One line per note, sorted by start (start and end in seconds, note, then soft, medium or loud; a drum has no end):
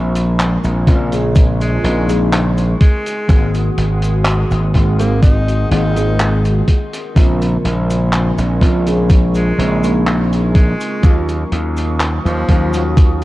0.00 0.57 A#1 medium
0.00 0.81 C#3 medium
0.00 0.81 G#3 medium
0.00 0.82 A#3 medium
0.00 0.82 C4 medium
0.00 0.83 F4 medium
0.00 2.77 A#4 medium
0.00 2.78 G#5 medium
0.00 11.00 C6 medium
0.00 2.77 C#6 loud
0.15 closed hi-hat medium
0.15 cabasa medium
0.39 clap loud
0.39 closed hi-hat medium
0.39 cabasa medium
0.64 0.83 A#1 medium
0.64 closed hi-hat medium
0.64 cabasa soft
0.86 1.77 A#1 loud
0.86 1.06 C#3 medium
0.86 1.06 G#3 medium
0.86 1.06 A#3 medium
0.86 1.07 C4 medium
0.86 1.07 F4 medium
0.86 kick medium
0.86 closed hi-hat medium
1.12 1.79 C#3 medium
1.12 1.79 G#3 medium
1.12 1.79 A#3 medium
1.12 1.80 C4 medium
1.12 1.80 G#4 loud
1.12 closed hi-hat medium
1.12 cabasa medium
1.35 kick loud
1.35 closed hi-hat medium
1.35 cabasa medium
1.61 2.19 G#3 medium
1.61 closed hi-hat medium
1.61 cabasa soft
1.83 2.74 A#1 loud
1.83 2.03 C#3 medium
1.83 2.03 G#3 medium
1.83 2.03 A#3 medium
1.83 2.03 C4 medium
1.83 2.04 D#4 loud
1.83 closed hi-hat medium
2.08 2.28 C#3 medium
2.08 2.28 G#3 medium
2.08 2.28 A#3 medium
2.08 2.28 C4 medium
2.08 2.29 G#4 medium
2.08 closed hi-hat medium
2.08 cabasa medium
2.32 clap loud
2.32 closed hi-hat medium
2.32 cabasa medium
2.58 closed hi-hat medium
2.58 cabasa soft
2.80 3.54 G#3 loud
2.80 6.64 G#4 medium
2.80 6.64 F#5 medium
2.80 6.64 D#6 medium
2.80 kick loud
2.80 closed hi-hat medium
3.06 closed hi-hat medium
3.06 cabasa medium
3.28 3.69 G#1 loud
3.28 4.68 D#3 medium
3.28 4.68 G#3 medium
3.28 4.69 A#3 medium
3.28 4.69 C4 medium
3.28 4.70 F#4 medium
3.28 kick loud
3.28 closed hi-hat medium
3.28 cabasa medium
3.54 closed hi-hat medium
3.54 cabasa soft
3.77 4.44 G#1 medium
3.77 closed hi-hat medium
4.02 closed hi-hat medium
4.02 cabasa medium
4.25 clap loud
4.25 closed hi-hat medium
4.25 cabasa medium
4.51 4.70 G#1 medium
4.51 closed hi-hat medium
4.51 cabasa soft
4.74 5.64 G#1 loud
4.74 4.93 D#3 medium
4.74 4.93 G#3 medium
4.74 4.94 A#3 medium
4.74 4.94 C4 medium
4.74 4.94 F#4 medium
4.74 kick medium
4.74 closed hi-hat medium
4.99 5.66 D#3 medium
4.99 5.66 G#3 medium
4.99 5.18 A#3 loud
4.99 5.67 A#3 medium
4.99 5.67 C4 medium
4.99 5.67 G#4 loud
4.99 closed hi-hat medium
4.99 cabasa medium
5.23 5.67 D#4 loud
5.23 kick loud
5.23 closed hi-hat medium
5.23 cabasa medium
5.48 closed hi-hat medium
5.48 cabasa soft
5.70 6.61 G#1 loud
5.70 5.90 D#3 loud
5.70 5.90 G#3 medium
5.70 5.90 A#3 medium
5.70 5.90 C4 medium
5.70 6.45 D#4 loud
5.70 5.91 F4 loud
5.70 closed hi-hat medium
5.95 6.15 D#3 medium
5.95 6.15 G#3 medium
5.95 6.15 A#3 medium
5.95 6.16 C4 medium
5.95 6.16 G#4 medium
5.95 closed hi-hat medium
5.95 cabasa medium
6.19 clap loud
6.19 closed hi-hat medium
6.19 cabasa medium
6.45 closed hi-hat medium
6.45 cabasa soft
6.67 13.24 A#4 medium
6.67 10.99 G#5 medium
6.67 13.24 C#6 loud
6.67 kick medium
6.67 closed hi-hat medium
6.93 closed hi-hat medium
6.93 cabasa medium
7.15 7.56 A#1 loud
7.15 8.55 C#3 medium
7.15 8.55 G#3 medium
7.15 8.56 A#3 medium
7.15 8.56 C4 medium
7.15 8.57 F4 medium
7.15 kick loud
7.15 closed hi-hat medium
7.15 cabasa medium
7.42 closed hi-hat medium
7.42 cabasa soft
7.65 8.31 A#1 medium
7.65 closed hi-hat medium
7.90 closed hi-hat medium
7.90 cabasa medium
8.13 clap loud
8.13 closed hi-hat medium
8.13 cabasa medium
8.38 8.57 A#1 medium
8.38 closed hi-hat medium
8.38 cabasa medium
8.61 9.51 A#1 loud
8.61 8.80 C#3 medium
8.61 8.81 G#3 medium
8.61 8.81 A#3 medium
8.61 8.81 C4 medium
8.61 8.81 F4 medium
8.61 kick medium
8.61 closed hi-hat medium
8.86 9.53 C#3 medium
8.86 9.54 G#3 medium
8.86 9.54 A#3 medium
8.86 9.54 C4 medium
8.86 9.54 G#4 medium
8.86 closed hi-hat medium
8.86 cabasa medium
9.10 kick loud
9.10 closed hi-hat medium
9.10 cabasa medium
9.35 9.93 G#3 medium
9.35 closed hi-hat medium
9.35 cabasa medium
9.58 10.73 A#1 loud
9.58 9.77 C#3 loud
9.58 9.77 G#3 medium
9.58 9.77 A#3 medium
9.58 9.78 C4 medium
9.58 9.78 D#4 loud
9.58 closed hi-hat medium
9.83 10.02 C#3 medium
9.83 10.02 G#3 medium
9.83 10.02 A#3 medium
9.83 10.03 C4 medium
9.83 10.03 G#4 medium
9.83 closed hi-hat medium
9.83 cabasa medium
10.07 clap loud
10.07 closed hi-hat medium
10.07 cabasa medium
10.33 closed hi-hat medium
10.33 cabasa soft
10.55 11.13 G#3 loud
10.55 kick loud
10.55 closed hi-hat medium
10.81 closed hi-hat medium
10.81 cabasa medium
11.02 11.43 D#2 loud
11.02 12.42 D#3 medium
11.02 12.43 F#3 medium
11.02 12.43 A#3 medium
11.02 12.44 C#4 medium
11.02 12.44 F4 medium
11.02 13.24 D#6 loud
11.02 kick loud
11.02 closed hi-hat medium
11.02 cabasa medium
11.29 closed hi-hat medium
11.29 cabasa medium
11.52 12.18 D#2 medium
11.52 closed hi-hat medium
11.77 closed hi-hat medium
11.77 cabasa medium
12.00 clap loud
12.00 closed hi-hat medium
12.00 cabasa medium
12.25 12.44 D#2 loud
12.25 12.83 F3 loud
12.25 closed hi-hat medium
12.25 cabasa medium
12.48 13.24 D#2 loud
12.48 12.67 D#3 medium
12.48 12.68 F#3 medium
12.48 12.68 A#3 medium
12.48 12.68 C#4 medium
12.48 12.68 F4 medium
12.48 kick medium
12.48 closed hi-hat medium
12.73 13.24 D#3 medium
12.73 13.24 F#3 medium
12.73 13.24 A#3 medium
12.73 13.24 C#4 medium
12.73 13.24 F#4 loud
12.73 closed hi-hat medium
12.73 cabasa medium
12.97 kick loud
12.97 closed hi-hat medium
12.97 cabasa medium